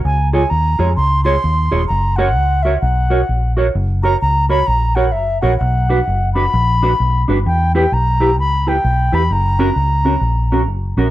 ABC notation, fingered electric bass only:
X:1
M:4/4
L:1/8
Q:"Swing" 1/4=130
K:F#phr
V:1 name="Fingered electric bass" clef=bass
C,,2 ^D,, ^E,, C,,2 D,, ^D,,, | F,,,2 C,,2 B,,,2 ^A,,,2 | F,,,2 C,,2 ^A,,,2 F,,, A,,, | B,,,2 F,,,2 ^A,,,2 B,,, G,,, |
E,,2 B,,,2 C,,2 B,,, E,, | F,,,2 C,,2 ^A,,,2 F,,, A,,, |]